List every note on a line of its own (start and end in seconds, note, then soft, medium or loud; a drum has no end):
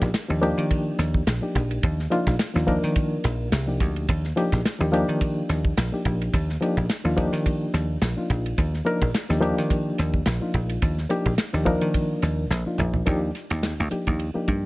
0.02 0.12 A#1 medium
0.02 kick medium
0.02 snare soft
0.02 ride medium
0.14 0.21 D#4 soft
0.14 0.22 A#4 soft
0.14 snare loud
0.14 hi-hat pedal medium
0.14 ride medium
0.28 0.52 D#2 medium
0.28 0.39 F3 medium
0.28 0.39 A#3 medium
0.28 0.40 D4 medium
0.28 0.40 D#4 medium
0.28 0.40 G4 medium
0.41 1.22 F3 loud
0.41 1.22 A#3 medium
0.41 1.22 D4 loud
0.41 1.22 D#4 medium
0.41 1.22 G4 loud
0.41 hi-hat pedal medium
0.41 ride medium
0.57 0.90 D#3 medium
0.57 ride medium
0.71 kick medium
0.71 hi-hat pedal medium
0.71 ride medium
0.98 1.21 D#2 medium
0.98 snare soft
0.98 hi-hat pedal medium
0.98 ride medium
1.14 kick medium
1.27 1.39 A#1 medium
1.27 snare loud
1.27 hi-hat pedal medium
1.27 ride medium
1.41 1.98 F3 medium
1.41 1.99 A#3 medium
1.41 1.99 D4 medium
1.41 1.99 D#4 medium
1.41 1.99 G4 medium
1.55 1.78 A#1 medium
1.55 kick medium
1.55 hi-hat pedal medium
1.55 ride medium
1.71 ride medium
1.83 2.06 D#2 medium
1.83 kick loud
1.83 hi-hat pedal medium
1.83 ride medium
1.99 snare soft
2.10 2.34 F3 loud
2.10 2.34 A#3 medium
2.10 2.34 D4 medium
2.10 2.34 D#4 medium
2.10 2.35 F4 loud
2.10 hi-hat pedal medium
2.10 ride medium
2.27 2.37 A#1 medium
2.27 kick medium
2.27 snare soft
2.27 ride medium
2.39 2.46 D#4 soft
2.39 2.47 F4 soft
2.39 snare loud
2.39 hi-hat pedal medium
2.39 ride medium
2.54 2.78 D#2 medium
2.54 2.65 F3 medium
2.54 2.65 A#3 medium
2.54 2.65 D4 medium
2.54 2.65 D#4 medium
2.54 2.65 F4 medium
2.54 snare soft
2.67 3.47 F3 medium
2.67 3.47 A#3 loud
2.67 3.47 D4 medium
2.67 3.47 D#4 medium
2.67 3.48 A#4 loud
2.67 kick medium
2.67 hi-hat pedal medium
2.67 ride medium
2.84 3.16 D#3 medium
2.84 snare soft
2.84 ride medium
2.96 kick medium
2.96 hi-hat pedal medium
2.96 ride medium
3.24 3.49 A#1 medium
3.24 snare soft
3.24 hi-hat pedal medium
3.24 ride medium
3.52 3.77 C2 medium
3.52 snare loud
3.52 hi-hat pedal medium
3.52 ride medium
3.67 4.24 F3 medium
3.67 4.24 A#3 medium
3.67 4.24 D4 medium
3.67 4.24 D#4 medium
3.67 4.24 G4 medium
3.80 4.06 D2 medium
3.80 kick medium
3.80 hi-hat pedal medium
3.80 ride soft
3.96 ride soft
4.09 4.31 D#2 medium
4.09 kick loud
4.09 hi-hat pedal medium
4.09 ride medium
4.24 snare soft
4.36 4.59 F3 loud
4.36 4.60 A#3 medium
4.36 4.60 D4 medium
4.36 4.60 D#4 medium
4.36 4.60 G4 loud
4.36 hi-hat pedal medium
4.36 ride medium
4.52 4.62 A#1 medium
4.52 kick medium
4.52 snare soft
4.52 ride medium
4.64 4.72 D#4 soft
4.64 4.73 F4 soft
4.64 snare loud
4.64 hi-hat pedal medium
4.64 ride medium
4.79 5.03 D#2 medium
4.79 4.90 F3 medium
4.79 4.90 A#3 medium
4.79 4.90 D4 medium
4.79 4.90 D#4 medium
4.79 4.91 G4 medium
4.92 5.72 F3 loud
4.92 5.72 A#3 medium
4.92 5.72 D4 loud
4.92 5.73 D#4 loud
4.92 5.73 G4 loud
4.92 hi-hat pedal medium
4.92 ride medium
5.08 5.41 D#3 medium
5.08 ride medium
5.21 kick medium
5.21 hi-hat pedal medium
5.21 ride medium
5.49 5.71 D#2 medium
5.49 snare soft
5.49 hi-hat pedal medium
5.49 ride medium
5.65 kick medium
5.77 5.89 A#1 medium
5.77 snare loud
5.77 hi-hat pedal medium
5.77 ride medium
5.92 6.49 F3 medium
5.92 6.49 A#3 medium
5.92 6.49 D4 medium
5.92 6.49 D#4 medium
5.92 6.49 G4 medium
6.05 6.28 A#1 medium
6.05 kick medium
6.05 hi-hat pedal medium
6.05 ride medium
6.22 ride medium
6.34 6.56 D#2 medium
6.34 kick loud
6.34 hi-hat pedal medium
6.34 ride medium
6.49 snare soft
6.61 6.84 F3 loud
6.61 6.84 A#3 medium
6.61 6.85 D4 loud
6.61 6.85 D#4 medium
6.61 6.85 G4 loud
6.61 hi-hat pedal medium
6.61 ride medium
6.77 6.87 A#1 medium
6.77 kick medium
6.77 ride medium
6.89 6.97 G4 soft
6.89 snare loud
6.89 hi-hat pedal medium
6.89 ride medium
7.04 7.27 D#2 medium
7.04 7.14 F3 medium
7.04 7.15 A#3 medium
7.04 7.15 D4 medium
7.04 7.15 D#4 medium
7.04 7.15 F4 medium
7.17 7.97 F3 loud
7.17 7.97 A#3 medium
7.17 7.97 D4 loud
7.17 7.97 D#4 loud
7.17 7.97 G4 loud
7.17 kick medium
7.17 hi-hat pedal medium
7.17 ride medium
7.33 7.65 D#3 medium
7.33 snare soft
7.33 ride medium
7.46 kick medium
7.46 hi-hat pedal medium
7.46 ride medium
7.73 7.96 D#2 medium
7.73 snare soft
7.73 hi-hat pedal medium
7.73 ride medium
8.01 8.14 A#1 medium
8.01 snare loud
8.01 hi-hat pedal medium
8.01 ride medium
8.16 8.73 F3 medium
8.16 8.73 A#3 medium
8.16 8.73 D4 medium
8.16 8.74 D#4 medium
8.16 8.74 F4 medium
8.30 8.52 A#1 medium
8.30 kick medium
8.30 hi-hat pedal medium
8.30 ride medium
8.46 ride medium
8.58 8.80 D#2 loud
8.58 kick medium
8.58 hi-hat pedal medium
8.58 ride medium
8.74 snare soft
8.85 9.08 F3 loud
8.85 9.09 A#3 medium
8.85 9.09 D4 medium
8.85 9.09 D#4 loud
8.85 9.09 A#4 loud
8.85 hi-hat pedal medium
8.85 ride medium
9.01 9.12 A#1 medium
9.01 kick medium
9.01 ride medium
9.14 9.21 D#4 soft
9.14 9.22 F4 soft
9.14 snare loud
9.14 hi-hat pedal loud
9.14 ride medium
9.29 9.52 D#2 medium
9.29 9.39 F3 medium
9.29 9.39 A#3 medium
9.29 9.40 D4 medium
9.29 9.40 D#4 medium
9.29 9.40 G4 medium
9.29 snare soft
9.41 10.21 F3 loud
9.41 10.21 A#3 loud
9.41 10.21 D4 loud
9.41 10.21 D#4 medium
9.41 10.22 G4 loud
9.41 hi-hat pedal medium
9.41 ride medium
9.58 9.90 D#3 medium
9.58 snare soft
9.58 ride medium
9.70 kick medium
9.70 hi-hat pedal medium
9.70 ride medium
9.98 10.21 D#2 medium
9.98 snare soft
9.98 hi-hat pedal medium
9.98 ride medium
10.14 kick medium
10.26 10.39 A#1 medium
10.26 snare loud
10.26 hi-hat pedal medium
10.26 ride medium
10.40 10.98 F3 medium
10.40 10.98 A#3 medium
10.40 10.98 D4 medium
10.40 10.98 D#4 medium
10.40 10.98 F4 medium
10.54 10.77 A#1 medium
10.54 kick medium
10.54 hi-hat pedal medium
10.54 ride medium
10.70 ride medium
10.82 11.05 D#2 medium
10.82 kick loud
10.82 hi-hat pedal medium
10.82 ride medium
10.98 snare soft
11.09 11.33 F3 medium
11.09 11.33 A#3 medium
11.09 11.33 D4 medium
11.09 11.34 D#4 medium
11.09 11.34 G4 loud
11.09 hi-hat pedal medium
11.09 ride medium
11.26 11.36 A#1 medium
11.26 kick medium
11.26 ride medium
11.37 11.45 D#4 soft
11.37 11.46 G4 soft
11.37 snare loud
11.37 hi-hat pedal medium
11.37 ride medium
11.53 11.76 D#2 medium
11.53 11.64 F3 medium
11.53 11.64 A#3 medium
11.53 11.64 D4 medium
11.53 11.64 D#4 medium
11.53 11.64 G4 medium
11.53 snare soft
11.65 12.45 F3 loud
11.65 12.46 A#3 medium
11.65 12.46 D4 loud
11.65 12.46 D#4 medium
11.65 12.46 A#4 loud
11.65 kick medium
11.65 hi-hat pedal medium
11.65 ride medium
11.81 12.14 D#3 medium
11.81 ride medium
11.94 kick medium
11.94 hi-hat pedal medium
11.94 ride medium
12.22 12.45 D#2 medium
12.22 snare soft
12.22 hi-hat pedal medium
12.22 ride medium
12.50 12.63 A#1 medium
12.50 snare medium
12.50 hi-hat pedal medium
12.65 13.04 F3 medium
12.65 13.05 A#3 medium
12.65 13.05 D4 medium
12.65 13.06 D#4 medium
12.65 13.08 F4 medium
12.78 13.02 A#1 loud
12.78 hi-hat pedal medium
12.78 mid tom medium
12.94 floor tom medium
13.06 13.30 D#2 medium
13.06 13.30 F3 medium
13.06 13.30 A#3 medium
13.06 13.30 D4 medium
13.06 13.30 D#4 medium
13.06 13.31 G4 loud
13.06 kick medium
13.06 ride medium
13.35 13.43 D#4 soft
13.35 13.43 F4 soft
13.35 snare soft
13.35 hi-hat pedal medium
13.35 ride soft
13.50 13.73 D#2 medium
13.50 snare soft
13.50 ride medium
13.63 snare loud
13.63 ride medium
13.80 13.90 D2 medium
13.90 14.25 F3 medium
13.90 14.26 A#3 medium
13.90 14.26 D4 medium
13.90 14.26 D#4 medium
13.90 14.26 G4 medium
13.90 muted slap bass stroke soft
13.90 hi-hat pedal medium
13.90 ride medium
14.07 14.30 D#2 medium
14.07 kick medium
14.07 ride soft
14.19 ride medium
14.34 14.66 F3 medium
14.34 14.66 A#3 medium
14.34 14.66 D4 medium
14.34 14.66 D#4 medium
14.34 14.66 G4 medium
14.34 muted slap bass stroke soft
14.48 14.66 G2 medium
14.48 kick medium
14.48 hi-hat pedal medium
14.48 ride medium